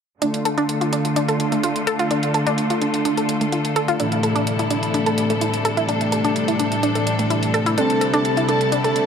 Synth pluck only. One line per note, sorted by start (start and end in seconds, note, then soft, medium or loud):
0.22 0.31 D4 medium
0.45 0.52 A4 medium
0.58 0.63 D4 loud
0.81 0.85 F4 medium
0.93 1.02 D4 medium
1.16 1.26 D4 medium
1.28 1.34 A4 medium
1.52 1.58 A3 medium
1.63 1.70 F4 medium
1.87 1.91 A4 loud
1.99 2.05 F4 loud
2.11 2.20 D4 medium
2.34 2.41 A4 medium
2.47 2.52 D4 loud
2.70 2.74 F4 medium
2.82 2.91 D4 medium
3.05 3.15 D4 medium
3.17 3.23 A4 medium
3.41 3.47 A3 medium
3.52 3.59 F4 medium
3.76 3.80 A4 loud
3.88 3.94 F4 loud
4.00 4.09 D4 medium
4.23 4.30 A4 medium
4.35 4.41 D4 loud
4.59 4.63 E4 medium
4.70 4.80 D4 medium
4.94 5.04 D4 medium
5.06 5.12 A4 medium
5.30 5.36 A3 medium
5.41 5.48 E4 medium
5.65 5.69 A4 loud
5.77 5.83 E4 medium
5.89 5.98 D4 medium
6.12 6.18 A4 medium
6.24 6.30 D4 loud
6.48 6.52 E4 medium
6.59 6.69 D4 medium
6.83 6.92 D4 medium
6.95 7.01 A4 medium
7.19 7.25 A3 medium
7.30 7.37 E4 medium
7.54 7.58 A4 loud
7.66 7.72 E4 loud
7.78 7.87 D4 medium
8.01 8.07 A4 medium
8.13 8.19 D4 loud
8.37 8.41 E4 medium
8.48 8.58 D4 medium
8.72 8.81 D4 medium
8.84 8.90 A4 medium